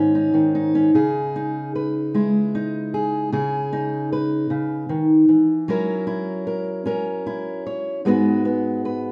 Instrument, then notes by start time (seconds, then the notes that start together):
steel-string acoustic guitar
Already playing: G#2 D#3 C#4 D#4
0.15 D#4
0.34 D#3
0.55 D#4
0.75 C#4
0.94 C#3 G#4
1.36 D#4
1.75 B4
2.14 G#3 E4
2.55 D#4
2.94 G#4
3.32 C#3 G#4
3.73 D#4
4.13 B4
4.50 C#3
4.89 D#3
5.29 E3
5.68 F#3 C#4 E4 A#4
6.07 E4
6.47 A#4
6.86 C#4 A#4
7.26 E4
7.67 C#5
8.05 G#2 G#3 B3 F#4 B4
8.45 B3
8.85 B4